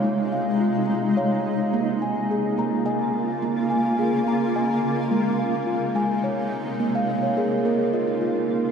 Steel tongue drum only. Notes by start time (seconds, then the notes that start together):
Already playing: F5
0.04 G#3
0.32 F5
0.61 F4
0.90 G#3
1.17 C#5 F5
1.73 A#3
2.02 G#5
2.31 G#4
2.58 A#3 A#5
2.86 D#5 G#5
3.42 A#3
3.70 G#5
3.99 G#4
4.27 A#3 A#5
4.56 D#5 G#5
5.11 G#3
5.39 F5
5.67 F4
5.95 G#3 G#5
6.24 C#5
6.80 A#3
6.95 F5
7.09 D#5
7.23 C#5
7.37 G#4 A#4
7.52 G#4
7.65 A#3 A#4
7.79 G#4
7.93 F4 D#5
8.07 D#4
8.21 F4
8.35 D#4
8.49 A#3